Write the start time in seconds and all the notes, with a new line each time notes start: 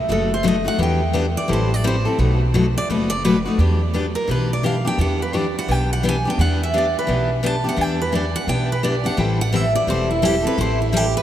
0.09 F#1 B2 F#3 A3 D#4 F#4 A4
0.34 C5
0.43 B2 F#3 A3 D#4 F#4
0.48 D#5
0.65 A3 D#4 F#4 F#5
0.78 E2 E3 B3 D4 G4
0.83 G5
1.13 E3 B3 D4 G4
1.37 D5
1.48 A1 E3 G3 C4 E4 A4
1.53 C5
1.74 D5
1.84 E3 G3 C4 E4 A4 C5
2.05 C4 E4 A4
2.18 B1 B2 F#3 A3 D#4 F#4
2.54 B2 F#3 A3 D#4 F#4
2.78 D5
2.89 F#1 B2 F#3 A3 D#4 F#4 B4
3.10 D5
3.24 B2 F#3 A3 D#4 F#4 B4
3.45 A3 D#4 F#4
3.58 E2 E3 B3 D4 G4
3.94 E3 B3 D4 G4
4.15 A#4
4.28 B1 E3 B3 D4 G4 B4
4.53 D5
4.63 E3 B3 D4 G4 F5
4.85 B3 D4 G4 G5
4.98 E2 E3 B3 D4 G4 F#5
5.22 B4
5.33 E3 B3 D4 G4 D5
5.59 F#5
5.68 B1 E3 B3 D4 G4 G5
5.93 F#5
6.03 E3 B3 D4 G4
6.09 G#5
6.25 B3 D4 G4
6.30 G5
6.38 E2 E3 B3 D4 G4 F#5
6.63 E5
6.74 E3 B3 D4 G4
6.78 D5
6.99 B4
7.07 B1 E3 B3 D4 G4
7.43 E3 B3 D4 G4 A5
7.64 B3 D4 G4
7.69 F#5
7.76 E2 E3 B3 D4 G4
7.81 G5
8.02 B4
8.12 E3 B3 D4 G4 D5
8.36 F#5
8.47 B1 E3 B3 D4 G4 G5
8.72 B4
8.83 E3 B3 D4 G4 D5
9.04 B3 D4 G4 F#5
9.17 A1 E3 G3 C4 E4 A4 G5
9.41 F#5
9.52 E3 G3 C4 E4 A4 E5
9.75 D5
9.87 E1 E3 G3 C4 E4 A4 C5
10.11 E4
10.22 E3 G3 C4 E4 G4 A4
10.42 C4 E4 A4
10.47 B4
10.57 A1 E3 G3 C4 E4 A4 C5
10.82 E4
10.92 E3 G3 C4 E4 G4 A4
11.17 B4